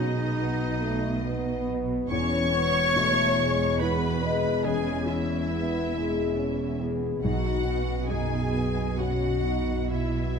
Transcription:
Already playing: double bass section B1, cello section B2, harp B2 F#3 G#3 B3 D#4 F#4, felt piano B3 D#4 F#4, french horn section C#4, viola section D#4, clarinet D#4, violin section D#5
0.17 harp B3
0.37 french horn section B3, harp F#4
0.60 harp B3
0.81 french horn section A3, harp D#4
1.24 harp F#3, french horn section B3
1.45 harp B3
1.67 harp D#4
1.89 harp B3
2.10 double bass section E1, cello section E2, felt piano E2, harp E3, french horn section C#4, clarinet C#5, viola section C#5, violin section C#6
2.31 harp E4
2.52 french horn section B3, harp F#4
2.74 harp E4
2.95 felt piano B2, french horn section A3, harp B4
3.17 harp E4
3.38 french horn section G#3, harp G#4
3.59 harp E4
3.80 harp B3, felt piano B3 E4 G#4, french horn section B3, clarinet B4, viola section B4, violin section B5
4.02 harp E4
4.23 harp G#4, french horn section D#5
4.44 harp E4
4.64 harp E3, french horn section C#4, viola section G#4, clarinet G#4, violin section G#5
4.86 harp B3
5.08 harp C#4, clarinet E4, viola section E4, violin section E5
5.29 harp E4
5.50 french horn section B3, harp B4
5.72 harp E4
5.93 french horn section G#3, harp G#4
6.15 harp E4
6.36 harp B3, french horn section C#4
6.59 harp E4
6.80 french horn section B3, harp G#4
7.02 harp E4
7.23 double bass section B1, felt piano B1, harp B2, cello section B2, french horn section D#4, viola section F#4, clarinet F#4, violin section F#5
7.45 harp B3
7.66 french horn section B3, harp C#4
7.88 harp B3
8.09 felt piano F#2, french horn section D#4, harp F#4, viola section G#4, clarinet G#4, violin section G#5
8.32 harp B3
8.53 french horn section B3
8.75 harp B3
8.98 harp F#3, felt piano B3 F#4, french horn section C#4, viola section F#4, clarinet F#4, violin section F#5
9.21 harp B3
9.45 french horn section D#4
9.67 harp B3
9.90 harp B2, french horn section B3, viola section E4, clarinet E4, violin section E5
10.14 harp F#3

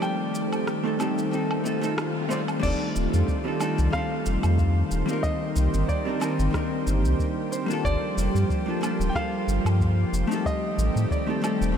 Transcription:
Already playing: analog synth pad G3 G4, hollow-body jazz guitar A3 C4 D#4 G4 A4
0.02 analog synth pad D#3 A3 C4, grand piano G5, low woodblock, shaker
0.35 shaker
0.53 low woodblock, shaker
0.67 cross-stick, shaker
0.84 hollow-body jazz guitar A3 C4 D#4 A4
0.99 hollow-body jazz guitar A3 C4 D#4 G4 A4, low woodblock, shaker
1.18 shaker
1.31 hollow-body jazz guitar A3 C4 D#4 A4, swell, shaker
1.51 low woodblock
1.64 hollow-body jazz guitar A3 C4 D#4 A4, shaker
1.81 hollow-body jazz guitar A3 C4 D#4 A4, shaker
1.98 cross-stick, low woodblock, shaker
2.29 hollow-body jazz guitar A3 C4 D#4 D5, grand piano C5, shaker
2.48 low woodblock, shaker
2.59 sub bass F1, hollow-body jazz guitar G3 C4 D4, grand piano D5, kick, crash
2.64 analog synth pad D#3 G3 A3 F4 C5, hollow-body jazz guitar D#4 A4, shaker
2.96 sub bass D#1, shaker
3.14 sub bass F2, shaker
3.29 kick, shaker
3.44 hollow-body jazz guitar G3 C4 D4 D#4 A4
3.60 hollow-body jazz guitar G3 C4 D4 D#4 A4, low woodblock, shaker
3.78 sub bass C2, shaker
3.90 hollow-body jazz guitar G3 C4 D4, grand piano F5, kick, cross-stick, shaker
3.96 hollow-body jazz guitar D#4 A4
4.26 sub bass F1, shaker
4.43 sub bass F2, low woodblock, shaker
4.59 kick, shaker
4.91 sub bass D#1, shaker
5.06 hollow-body jazz guitar G3 A#3 C4, shaker
5.11 hollow-body jazz guitar D#4 A#4
5.23 analog synth pad A#3 C4 G4, grand piano D#5, kick, shaker
5.56 sub bass C2, shaker
5.74 sub bass G1, shaker
5.89 grand piano D5, kick, shaker
6.05 hollow-body jazz guitar G3 C4 D4 D#4 A#4
6.20 hollow-body jazz guitar G3 C4 D4 D#4 A#4, low woodblock, shaker
6.39 sub bass G1, shaker
6.51 hollow-body jazz guitar G3 C4 D4, kick, cross-stick, shaker
6.56 hollow-body jazz guitar D#4 A#4
6.87 sub bass G1, shaker
7.04 sub bass C2, shaker
7.20 kick, shaker
7.52 grand piano C5, shaker
7.66 hollow-body jazz guitar G3 A#3 D4
7.71 hollow-body jazz guitar F4 A4, shaker
7.85 sub bass G1, analog synth pad F3 G3, grand piano D5, kick, shaker
8.17 sub bass F1, shaker
8.35 sub bass G2, shaker
8.50 kick, shaker
8.66 hollow-body jazz guitar G3 A#3 D4 F4 A4
8.81 hollow-body jazz guitar G3 A#3 D4 F4 A4, low woodblock, shaker
9.00 sub bass D1, shaker
9.09 hollow-body jazz guitar G3, grand piano G5
9.13 hollow-body jazz guitar A#3 D4 F4, grand piano F5, kick, cross-stick, shaker
9.19 hollow-body jazz guitar A4
9.48 sub bass G1, shaker
9.65 sub bass G2, low woodblock, shaker
9.81 kick, shaker
10.13 sub bass F1, shaker
10.27 hollow-body jazz guitar A3 C4 D#4
10.32 hollow-body jazz guitar G4 A4, shaker
10.46 analog synth pad D#3 A3 C4 G4, grand piano D#5, kick, shaker
10.78 sub bass A1, shaker
10.96 sub bass A2, shaker
11.11 grand piano D5, kick, shaker
11.27 hollow-body jazz guitar A3 C4 D#4 A4
11.42 hollow-body jazz guitar A3 C4 D#4 A4, low woodblock, shaker
11.61 sub bass D#1, shaker
11.72 hollow-body jazz guitar A3 C4

